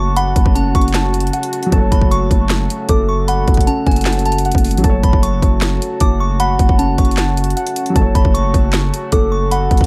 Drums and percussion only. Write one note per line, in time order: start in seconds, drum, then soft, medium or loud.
0.16 closed hi-hat medium
0.36 kick loud
0.36 closed hi-hat medium
0.46 kick loud
0.56 closed hi-hat medium
0.75 kick loud
0.75 closed hi-hat medium
0.81 closed hi-hat medium
0.88 closed hi-hat medium
0.94 snare loud
0.94 clap medium
0.94 closed hi-hat medium
1.14 closed hi-hat medium
1.20 closed hi-hat medium
1.27 closed hi-hat medium
1.33 closed hi-hat medium
1.43 closed hi-hat medium
1.53 closed hi-hat medium
1.63 closed hi-hat soft
1.72 kick loud
1.72 closed hi-hat medium
1.92 kick loud
1.92 closed hi-hat medium
2.02 kick medium
2.12 closed hi-hat medium
2.31 kick loud
2.31 closed hi-hat medium
2.49 snare loud
2.49 clap medium
2.49 closed hi-hat medium
2.70 closed hi-hat medium
2.89 kick loud
2.89 closed hi-hat medium
3.28 closed hi-hat medium
3.48 kick loud
3.48 closed hi-hat soft
3.54 kick medium
3.54 closed hi-hat medium
3.61 closed hi-hat medium
3.67 closed hi-hat medium
3.87 kick loud
3.87 closed hi-hat soft
3.91 closed hi-hat soft
3.96 closed hi-hat medium
4.01 clap medium
4.01 closed hi-hat medium
4.06 snare loud
4.06 closed hi-hat medium
4.13 closed hi-hat medium
4.19 closed hi-hat medium
4.25 closed hi-hat soft
4.32 closed hi-hat medium
4.38 closed hi-hat medium
4.45 closed hi-hat medium
4.52 kick loud
4.52 closed hi-hat medium
4.58 closed hi-hat medium
4.64 closed hi-hat medium
4.64 open hi-hat medium
4.71 closed hi-hat medium
4.77 closed hi-hat medium
4.84 kick loud
4.84 closed hi-hat medium
5.03 kick loud
5.03 closed hi-hat medium
5.13 kick loud
5.23 closed hi-hat medium
5.42 kick loud
5.42 closed hi-hat medium
5.61 snare loud
5.61 clap medium
5.61 closed hi-hat medium
5.82 closed hi-hat medium
6.00 kick loud
6.00 closed hi-hat medium
6.40 closed hi-hat medium
6.59 kick loud
6.59 closed hi-hat medium
6.69 kick loud
6.79 closed hi-hat medium
6.98 kick loud
6.98 closed hi-hat medium
7.05 closed hi-hat medium
7.11 closed hi-hat medium
7.17 snare loud
7.17 clap medium
7.17 closed hi-hat medium
7.37 closed hi-hat medium
7.44 closed hi-hat medium
7.50 closed hi-hat medium
7.57 closed hi-hat medium
7.67 closed hi-hat medium
7.76 closed hi-hat medium
7.86 closed hi-hat soft
7.96 kick loud
7.96 closed hi-hat medium
8.15 kick loud
8.15 closed hi-hat medium
8.25 kick medium
8.35 closed hi-hat medium
8.54 kick medium
8.54 closed hi-hat medium
8.73 snare loud
8.73 clap medium
8.73 closed hi-hat medium
8.94 closed hi-hat medium
9.12 kick loud
9.12 closed hi-hat medium
9.51 closed hi-hat medium
9.71 kick loud
9.71 closed hi-hat soft
9.77 kick loud
9.77 closed hi-hat medium